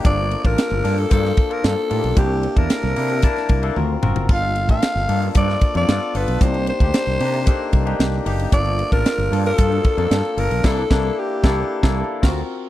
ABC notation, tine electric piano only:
X:1
M:4/4
L:1/16
Q:1/4=113
K:Gm
V:1 name="Tine electric piano"
[B,DFA]3 [B,DFa]3 [B,DFA]2 [B,DFc]3 [B,DFA]3 [B,DFG]2 | [B,D=EA]3 [B,DEa]3 [B,DEA]2 [B,DEa]3 [B,DEA] [C^E^F^A]2 [CEFA]2 | [B,DFA]3 [B,DFA]3 [B,DFA]2 [B,DFA]3 [B,DFA] [=B,DFA]2 [B,DFA]2 | [B,DEG]3 [B,DEG]3 [B,DEG]2 [B,DEA]3 [B,DEG]3 [B,DEG]2 |
[B,DFA]3 [B,DFa]3 [B,DFA]2 [B,DFA]3 [B,DFA]3 [B,DFA]2 | [B,D=EA]2 [B,DEA]2 z2 [B,DEA]2 z [B,DEA]2 z [C^E^F^A]2 z2 |]